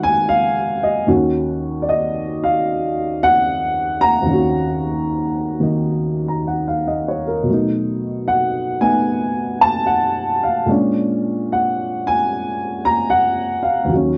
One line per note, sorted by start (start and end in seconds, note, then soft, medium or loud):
0.00 1.06 G#2 soft
0.00 1.06 D#3 medium
0.00 1.08 B3 soft
0.00 1.07 F#4 medium
0.00 1.09 E5 medium
0.00 0.29 F5 medium
0.00 1.09 F#5 medium
0.00 0.26 G#5 medium
0.29 0.84 F5 medium
0.83 1.06 D#5 medium
1.07 4.20 D#2 medium
1.07 4.24 D#3 soft
1.07 4.28 C#4 soft
1.07 4.28 F#4 medium
1.82 1.87 D5 medium
1.89 2.44 D#5 medium
2.44 3.25 F5 medium
3.23 3.99 F#5 loud
4.01 6.46 F#5 medium
4.01 6.27 A#5 loud
4.22 7.45 D#2 soft
4.22 5.58 D#3 soft
4.29 7.49 C#4 soft
4.33 7.51 F#4 medium
5.60 7.47 D#3 soft
5.60 7.48 A#3 soft
5.60 7.49 D#4 soft
6.28 6.52 A#5 soft
6.47 6.75 F#5 soft
6.68 7.06 F5 soft
6.87 7.22 D#5 medium
7.08 7.33 C#5 soft
7.27 7.55 A#4 soft
7.43 10.66 B2 soft
7.43 10.68 F#3 soft
7.50 8.79 A3 soft
7.50 8.82 D#4 medium
8.28 8.84 F#5 medium
8.80 10.68 A3 soft
8.80 10.68 B3 soft
8.80 10.69 D#4 soft
8.80 9.65 G#5 medium
9.61 9.88 A5 medium
9.86 10.38 F#5 medium
10.43 10.49 F5 medium
10.66 13.89 A#2 medium
10.66 13.90 G#3 soft
10.66 13.91 C#4 soft
10.71 13.92 D4 medium
11.52 12.02 F#5 medium
12.07 12.88 G#5 medium
12.85 13.11 A#5 medium
13.10 13.61 F#5 medium
13.63 13.88 F5 medium
13.85 14.18 D#2 soft
13.85 14.18 D#3 soft
13.92 14.18 F#3 soft
13.92 14.18 C#4 soft